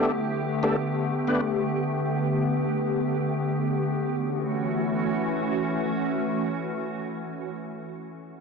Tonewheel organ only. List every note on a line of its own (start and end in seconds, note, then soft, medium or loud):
0.00 0.12 A3 medium
0.00 0.12 B3 medium
0.00 0.12 D4 medium
0.00 0.12 G4 medium
0.00 0.12 A4 loud
0.63 0.76 A3 medium
0.63 0.76 B3 medium
0.63 0.76 D4 medium
0.63 0.76 G4 medium
0.63 0.77 A4 loud
1.27 1.41 A3 medium
1.27 1.41 B3 medium
1.27 1.41 D4 medium
1.27 1.41 G4 medium
1.27 1.41 B4 loud